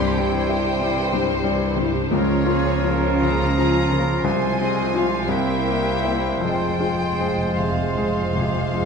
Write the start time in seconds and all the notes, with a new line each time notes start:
Already playing: C2 G2 C3 G3 E4 G4 C5 C6
0.17 E3 G3 E4 C5 G5
0.49 G3 E4 G4
0.81 E3 G3 E4
1.12 G2 G3 G4
1.44 E3 G3 E4
1.77 G2 G3 E4 G4
1.81 G3
2.10 C#2 C#3 F3 C#4 F4 A#4 C#5
2.46 A#3 C#4 F4 G#4
2.84 F3 A#3 C#4 F4 A#4
3.22 C#3 A#3 C#4 F4 A#5
3.57 F3 C#4 F4 G#4
3.90 C#3 A#3 C#4 A#4
3.94 A#3 F4
4.24 C2 C3 G#3 F4 C5 G#5
4.60 F3 C4 G#4 D#5
4.94 G#3 C4 F4 C5 F5
5.28 C2 A#3 C4 E4 E5 G5
5.67 A#3 G4
6.04 A#3 C4 E4 C5
6.41 F1 F2 F3 G#3 F4 C5 G5
6.52 F2
6.61 F2
6.69 F2
6.78 F2 F4
6.83 G#3 G#4
6.87 F2
6.94 F2
7.04 F2
7.11 F2
7.20 F2 F3 G#3 F4
7.30 F2
7.37 F2
7.46 F2
7.55 F2 C3 F5
7.59 F2 G#3 G#4
7.71 F2
7.79 F2
7.87 F2
7.95 F2 F3 G#3 F4
8.03 F2
8.12 F2
8.22 F2
8.30 F2
8.35 F2 C3 G#3 F4 G#4
8.48 F2
8.56 F2
8.63 F2
8.73 F2 F3 G#3 F4
8.81 F2